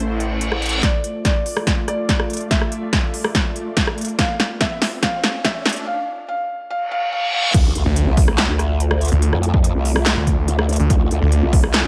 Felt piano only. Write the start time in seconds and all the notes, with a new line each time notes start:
Already playing: A4
0.83 D5
1.25 D5
1.88 D5
2.51 E5
4.19 F5
4.61 E5
5.03 F5
5.45 E5
5.87 F5
6.28 F5
6.70 F5
6.91 F5
7.12 F5
7.33 F5